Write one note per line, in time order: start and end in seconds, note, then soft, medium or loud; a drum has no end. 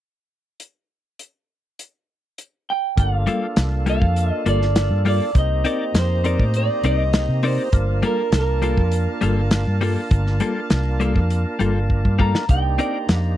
0.60 closed hi-hat medium
1.19 closed hi-hat medium
1.79 closed hi-hat medium
2.38 closed hi-hat medium
2.70 2.99 G5 medium
2.96 3.26 G1 loud
2.96 5.31 A#3 medium
2.96 5.31 D4 medium
2.96 5.32 F4 medium
2.96 5.32 A4 medium
2.96 5.33 F5 medium
2.96 3.88 F5 loud
2.96 5.33 A5 medium
2.96 kick loud
2.96 closed hi-hat medium
3.27 3.45 G3 medium
3.27 3.46 A#3 medium
3.27 3.46 F4 medium
3.27 3.46 A4 medium
3.27 closed hi-hat medium
3.56 4.00 C2 medium
3.56 snare loud
3.56 closed hi-hat medium
3.86 4.05 G3 medium
3.86 4.05 A#3 medium
3.86 4.05 F4 medium
3.86 4.06 A4 medium
3.86 4.32 F5 medium
3.86 closed hi-hat medium
4.01 4.30 F2 medium
4.01 kick medium
4.16 closed hi-hat medium
4.32 4.44 D#5 medium
4.46 4.89 G1 medium
4.46 4.64 G3 medium
4.46 4.65 A#3 medium
4.46 4.65 F4 medium
4.46 4.65 A4 medium
4.46 5.03 D5 medium
4.46 closed hi-hat medium
4.62 snare soft
4.76 snare loud
4.76 closed hi-hat medium
4.91 5.19 G2 medium
5.05 5.24 G3 medium
5.05 5.24 A#3 medium
5.05 5.24 F4 medium
5.05 5.25 A4 medium
5.05 5.35 D5 medium
5.05 open hi-hat medium
5.34 5.64 C2 loud
5.34 7.69 A#3 medium
5.34 7.69 C4 medium
5.34 7.69 D#4 medium
5.34 7.70 G4 medium
5.34 7.71 C5 medium
5.34 7.70 D#5 medium
5.34 7.71 A#5 medium
5.34 kick loud
5.34 closed hi-hat medium
5.39 5.98 D#5 medium
5.65 5.83 C4 medium
5.65 5.83 D#4 medium
5.65 5.84 A#4 medium
5.65 5.84 D5 medium
5.65 closed hi-hat medium
5.94 6.37 F2 medium
5.94 snare loud
5.94 closed hi-hat medium
5.98 6.56 C5 medium
6.24 6.43 C4 medium
6.24 6.43 D#4 medium
6.24 6.43 A#4 medium
6.24 6.44 D5 medium
6.24 closed hi-hat medium
6.39 6.68 A2 medium
6.39 kick medium
6.54 6.83 D5 medium
6.54 closed hi-hat medium
6.83 7.26 C2 medium
6.83 7.02 C4 medium
6.83 7.03 D#4 medium
6.83 7.03 A#4 medium
6.83 7.03 D5 medium
6.83 7.46 D#5 medium
6.83 closed hi-hat medium
7.13 snare loud
7.13 closed hi-hat medium
7.29 7.57 C3 medium
7.43 7.62 C4 medium
7.43 7.62 D#4 medium
7.43 7.62 A#4 medium
7.43 8.05 C5 medium
7.43 7.62 D5 medium
7.43 open hi-hat medium
7.72 8.01 G1 loud
7.72 12.45 A#3 medium
7.72 12.45 D4 medium
7.72 12.45 F4 medium
7.72 12.46 A#4 medium
7.72 12.45 F5 medium
7.72 12.45 A5 medium
7.72 kick loud
7.72 closed hi-hat medium
8.03 8.21 G3 medium
8.03 8.21 A#3 medium
8.03 8.21 F4 medium
8.03 8.22 A4 medium
8.03 8.34 A#4 medium
8.03 closed hi-hat medium
8.32 8.75 C2 medium
8.32 9.20 A#4 medium
8.32 snare loud
8.32 closed hi-hat medium
8.62 8.80 G3 medium
8.62 8.81 A#3 medium
8.62 8.81 F4 medium
8.62 8.81 A4 medium
8.62 closed hi-hat medium
8.77 9.06 F2 medium
8.77 kick medium
8.92 closed hi-hat medium
9.21 9.65 G1 medium
9.21 9.40 G3 medium
9.21 9.40 A#3 medium
9.21 9.41 F4 medium
9.21 9.41 A4 medium
9.21 closed hi-hat medium
9.51 snare loud
9.51 closed hi-hat medium
9.67 9.95 G2 medium
9.81 9.99 G3 medium
9.81 10.00 A#3 medium
9.81 10.00 F4 medium
9.81 10.01 A4 medium
9.81 open hi-hat medium
10.11 10.39 G1 loud
10.11 kick loud
10.11 closed hi-hat medium
10.27 snare soft
10.40 10.59 G3 medium
10.40 10.59 A#3 medium
10.40 10.60 F4 medium
10.40 10.60 A4 medium
10.40 closed hi-hat medium
10.70 11.14 C2 medium
10.70 snare loud
10.70 closed hi-hat medium
11.00 11.18 G3 medium
11.00 11.19 A#3 medium
11.00 11.19 F4 medium
11.00 11.19 A4 medium
11.00 closed hi-hat medium
11.15 11.44 F2 medium
11.15 kick medium
11.30 closed hi-hat medium
11.59 12.03 G1 medium
11.59 11.78 G3 medium
11.59 11.78 A#3 medium
11.59 11.79 F4 medium
11.59 11.79 A4 medium
11.59 closed hi-hat medium
11.90 kick medium
12.05 12.33 G2 medium
12.05 kick medium
12.19 12.37 G3 medium
12.19 12.37 A#3 medium
12.19 12.38 F4 medium
12.19 12.38 A4 medium
12.19 12.48 A#5 medium
12.19 kick medium
12.35 snare medium
12.48 12.77 C2 loud
12.48 13.37 A#3 medium
12.48 13.37 D4 medium
12.48 13.37 D#4 medium
12.48 13.37 G4 medium
12.48 13.37 C5 medium
12.48 13.37 D5 medium
12.48 13.16 G5 medium
12.48 13.37 A#5 medium
12.48 kick loud
12.48 closed hi-hat medium
12.79 12.97 C4 medium
12.79 12.97 D#4 medium
12.79 12.98 A#4 medium
12.79 12.98 D5 medium
12.79 closed hi-hat medium
13.09 13.37 F2 medium
13.09 snare loud
13.09 closed hi-hat medium
13.16 13.37 F5 medium